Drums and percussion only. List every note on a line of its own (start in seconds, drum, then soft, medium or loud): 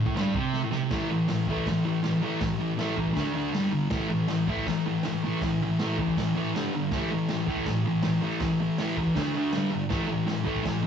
0.06 kick loud
0.17 snare loud
0.17 crash medium
0.34 kick loud
0.53 snare medium
0.72 snare medium
0.91 kick loud
0.91 snare loud
0.91 open hi-hat medium
1.28 snare loud
1.28 open hi-hat medium
1.47 kick medium
1.57 kick medium
1.66 kick loud
1.66 snare loud
1.66 open hi-hat medium
2.04 snare loud
2.04 open hi-hat medium
2.41 kick loud
2.41 snare loud
2.41 open hi-hat medium
2.79 snare loud
2.79 open hi-hat medium
2.98 kick medium
3.07 kick medium
3.16 kick loud
3.16 snare loud
3.16 open hi-hat medium
3.54 snare loud
3.54 open hi-hat medium
3.90 kick loud
3.90 snare loud
3.90 open hi-hat medium
4.28 snare loud
4.28 open hi-hat medium
4.47 kick medium
4.57 kick medium
4.66 kick loud
4.66 snare loud
4.66 open hi-hat medium
5.03 snare loud
5.03 open hi-hat medium
5.41 kick loud
5.41 snare loud
5.41 open hi-hat medium
5.79 snare loud
5.79 open hi-hat medium
5.98 kick medium
6.07 kick medium
6.17 kick medium
6.17 snare loud
6.17 open hi-hat medium
6.56 snare loud
6.56 open hi-hat medium
6.91 kick loud
6.91 snare loud
6.91 open hi-hat medium
7.28 snare loud
7.28 open hi-hat medium
7.47 kick medium
7.57 kick medium
7.66 kick medium
7.66 snare loud
7.66 open hi-hat medium
8.02 snare loud
8.02 open hi-hat medium
8.40 kick loud
8.40 snare loud
8.40 open hi-hat medium
8.78 snare loud
8.78 open hi-hat medium
8.97 kick medium
9.07 kick medium
9.16 kick medium
9.16 snare loud
9.16 open hi-hat medium
9.53 snare loud
9.53 open hi-hat medium
9.90 kick loud
9.90 snare loud
9.90 open hi-hat medium
10.28 snare loud
10.28 open hi-hat medium
10.47 kick medium
10.56 kick medium
10.65 kick medium
10.65 snare loud
10.65 open hi-hat medium